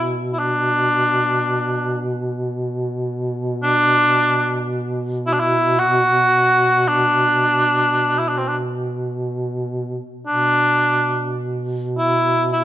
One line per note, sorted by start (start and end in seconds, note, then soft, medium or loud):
0.00 10.10 B2 soft
0.00 0.12 E4 medium
0.33 0.40 E4 medium
0.39 2.02 D4 medium
3.63 4.68 D4 loud
5.27 5.35 E4 medium
5.33 5.41 D4 medium
5.40 5.80 E4 medium
5.79 6.89 F#4 loud
6.88 8.20 D4 medium
8.19 8.30 E4 medium
8.29 8.39 D4 medium
8.38 8.49 C4 medium
8.47 8.56 D4 medium
10.27 12.64 B2 soft
10.27 11.35 D4 medium
11.98 12.48 E4 medium
12.53 12.64 E4 medium